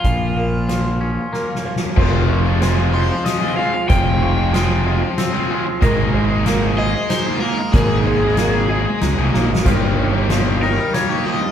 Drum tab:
CC |------------------|x-----------------|------------------|------------------|
HH |x-----x-----------|------x-----x-----|x-----x-----x-----|x-----x-----x-----|
SD |------o-----o-o-o-|------o-----o-----|------o-----o-----|------o-----o-----|
BD |o-----------------|o-----------------|o-----------------|o-----------------|

CC |------------------|x-----------------|
HH |x-----x-----x-----|x-----x-----x-----|
SD |------o-----o--o-o|------o-----o-----|
BD |o-----------------|o-----------------|